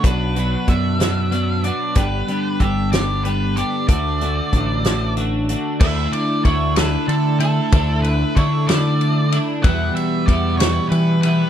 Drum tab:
CC |------|------|------|x-----|
RD |------|------|------|-xxxxx|
HH |xxxxxx|xxxxxx|xxxxxx|------|
SD |---o--|---o--|---o--|---o--|
BD |o-o---|o-o---|o-o---|o-o---|

CC |------|------|
RD |xxxxxx|xxxxxx|
HH |------|------|
SD |---o--|---o--|
BD |o-o---|o-o---|